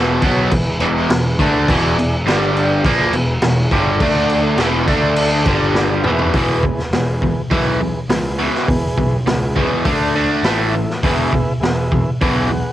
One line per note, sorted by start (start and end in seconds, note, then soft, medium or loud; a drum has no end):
0.00 0.20 E1 medium
0.00 0.22 E2 medium
0.00 0.21 B2 medium
0.00 0.23 E3 loud
0.00 0.17 E4 medium
0.00 0.18 G#4 medium
0.00 0.18 B4 loud
0.22 0.50 B1 loud
0.22 0.51 B2 loud
0.22 0.51 F#3 medium
0.22 0.52 B3 loud
0.22 0.48 E4 medium
0.22 kick loud
0.22 crash medium
0.26 0.49 G#4 medium
0.26 0.49 C#5 medium
0.51 0.78 E1 medium
0.51 0.75 E2 medium
0.51 0.75 B2 medium
0.51 1.00 E4 medium
0.51 1.01 G#4 medium
0.51 1.01 B4 medium
0.51 kick loud
0.51 crash medium
0.80 1.07 E1 loud
0.80 1.09 E2 loud
0.80 1.09 B2 loud
0.80 1.10 E3 loud
0.80 crash medium
1.09 1.37 E1 medium
1.09 1.33 E2 medium
1.09 1.34 B2 medium
1.09 1.58 E4 medium
1.09 1.58 G#4 medium
1.09 1.59 B4 medium
1.09 snare loud
1.09 crash medium
1.39 1.66 D2 loud
1.39 1.67 D3 medium
1.39 1.68 A3 medium
1.39 1.68 D4 medium
1.39 kick loud
1.39 crash medium
1.68 1.95 E1 loud
1.68 1.97 E2 loud
1.68 1.97 B2 medium
1.68 1.97 E3 loud
1.68 2.17 E4 loud
1.68 2.16 G#4 loud
1.68 2.17 D5 loud
1.68 kick loud
1.68 crash medium
1.96 2.23 E1 medium
1.96 2.21 E2 medium
1.96 2.21 B2 medium
1.96 crash medium
2.24 2.79 G1 medium
2.24 2.83 G2 loud
2.24 2.84 D3 medium
2.24 2.84 G3 loud
2.24 2.51 D4 medium
2.24 2.51 G4 medium
2.24 snare medium
2.24 crash medium
2.29 2.52 D5 loud
2.56 2.80 D4 medium
2.56 2.80 G4 medium
2.56 2.80 D5 medium
2.56 crash medium
2.84 3.10 A#1 medium
2.84 3.13 A#2 medium
2.84 3.13 F3 medium
2.84 3.13 A#3 loud
2.84 3.34 E4 medium
2.84 3.34 G#4 medium
2.84 3.34 B4 loud
2.84 kick loud
2.84 crash medium
3.11 3.39 E1 medium
3.11 3.37 E2 medium
3.11 3.37 B2 medium
3.11 crash medium
3.40 3.68 E1 medium
3.40 3.66 E2 medium
3.40 3.66 B2 medium
3.40 3.91 E4 medium
3.40 3.91 G#4 medium
3.40 snare loud
3.40 crash medium
3.44 3.92 C#5 medium
3.71 3.99 G1 medium
3.71 4.00 G2 medium
3.71 4.00 D3 medium
3.71 4.01 G3 medium
3.71 kick loud
3.71 crash medium
3.98 4.55 D2 loud
3.98 4.59 D3 medium
3.98 4.59 A3 loud
3.98 4.48 D4 loud
3.98 4.48 A4 loud
3.98 4.49 D5 loud
3.98 kick loud
3.98 crash medium
4.03 4.59 D4 loud
4.29 crash medium
4.56 4.85 E1 loud
4.56 4.87 E2 medium
4.56 4.87 B2 loud
4.56 4.88 E3 loud
4.56 4.82 E4 medium
4.56 4.83 G#4 medium
4.56 4.82 B4 loud
4.56 snare loud
4.56 crash medium
4.85 5.42 D2 medium
4.85 5.46 D3 medium
4.85 5.46 A3 loud
4.85 5.35 D4 medium
4.85 5.36 A4 medium
4.85 5.36 D5 loud
4.85 kick medium
4.85 crash medium
4.89 5.46 D4 loud
5.16 crash medium
5.43 6.01 G1 loud
5.43 6.04 G2 medium
5.43 5.94 D4 medium
5.43 5.94 G4 medium
5.43 5.94 D5 medium
5.43 kick loud
5.43 crash medium
5.47 6.05 D3 medium
5.47 6.05 G3 loud
5.75 snare medium
6.02 6.32 E1 medium
6.02 6.34 E2 medium
6.02 6.28 E4 loud
6.02 6.29 G#4 medium
6.02 6.29 B4 loud
6.02 mid tom medium
6.06 6.34 B2 medium
6.06 6.35 E3 loud
6.19 floor tom medium
6.33 6.74 E1 loud
6.33 6.62 E2 medium
6.33 6.62 B2 medium
6.33 6.63 E3 medium
6.33 6.82 E4 loud
6.33 6.83 G#4 loud
6.33 6.83 B4 loud
6.33 kick loud
6.33 open hi-hat medium
6.63 6.90 E2 medium
6.63 6.91 B2 medium
6.63 kick medium
6.79 snare soft
6.91 7.31 E1 medium
6.91 7.20 E2 medium
6.91 7.20 B2 medium
6.91 7.42 E4 medium
6.91 7.42 G#4 medium
6.91 7.42 B4 medium
6.91 snare medium
6.91 open hi-hat soft
7.22 7.49 E2 medium
7.22 7.49 B2 medium
7.22 kick medium
7.51 7.91 B1 medium
7.51 7.79 E2 medium
7.51 7.79 B2 medium
7.51 7.80 E3 loud
7.51 8.00 E4 medium
7.51 8.00 G#4 medium
7.51 8.01 B4 medium
7.51 kick loud
7.51 open hi-hat medium
7.81 8.07 E2 medium
7.81 8.08 B2 medium
8.09 8.49 C#2 medium
8.09 8.37 E2 medium
8.09 8.37 B2 medium
8.09 8.59 E4 medium
8.09 8.59 G#4 medium
8.09 8.59 B4 medium
8.09 snare loud
8.09 open hi-hat medium
8.39 8.67 E2 medium
8.39 8.67 B2 medium
8.39 8.67 E3 medium
8.55 snare soft
8.67 8.88 E1 loud
8.67 8.95 E2 medium
8.67 8.95 B2 medium
8.67 9.17 E4 loud
8.67 9.17 G#4 medium
8.67 9.17 B4 loud
8.67 kick loud
8.67 open hi-hat medium
8.97 9.18 B1 medium
8.97 9.24 E2 medium
8.97 9.24 B2 medium
8.97 kick medium
9.26 9.66 C#2 medium
9.26 9.53 E2 medium
9.26 9.54 B2 medium
9.26 9.76 E4 medium
9.26 9.76 G#4 medium
9.26 9.77 B4 medium
9.26 snare loud
9.26 open hi-hat medium
9.56 9.84 E2 medium
9.56 9.84 B2 medium
9.56 9.85 E3 loud
9.56 kick medium
9.85 10.25 D2 medium
9.85 10.13 D3 medium
9.85 10.13 A3 medium
9.85 10.14 D4 medium
9.85 10.36 D4 medium
9.85 10.36 A4 medium
9.85 10.36 D5 medium
9.85 kick loud
9.85 open hi-hat medium
10.16 10.43 D3 medium
10.16 10.43 A3 medium
10.16 10.44 D4 loud
10.43 10.83 A1 medium
10.43 10.72 A2 medium
10.43 10.73 E3 medium
10.43 10.73 A3 loud
10.43 10.93 E4 medium
10.43 10.94 A4 medium
10.43 10.93 E5 medium
10.43 snare loud
10.43 open hi-hat medium
10.75 11.01 A2 medium
10.75 11.01 E3 medium
10.90 snare soft
11.03 11.43 E1 medium
11.03 11.31 E2 medium
11.03 11.31 B2 medium
11.03 11.32 E3 medium
11.03 11.53 G#4 loud
11.03 11.53 B4 loud
11.03 11.54 E5 loud
11.03 kick loud
11.03 open hi-hat medium
11.33 11.59 E2 medium
11.33 11.60 B2 medium
11.33 kick medium
11.60 12.01 E1 medium
11.60 11.89 E2 medium
11.60 11.89 B2 medium
11.60 12.10 G#4 medium
11.60 12.10 B4 medium
11.60 12.11 E5 loud
11.60 snare medium
11.60 open hi-hat soft
11.92 12.18 E2 medium
11.92 12.18 B2 medium
11.92 kick medium
12.21 12.61 B1 medium
12.21 12.49 E2 medium
12.21 12.49 B2 medium
12.21 12.49 E3 loud
12.21 12.71 G#4 medium
12.21 12.70 B4 medium
12.21 12.71 F#5 medium
12.21 kick loud
12.21 open hi-hat medium
12.50 12.73 E2 medium
12.50 12.73 B2 medium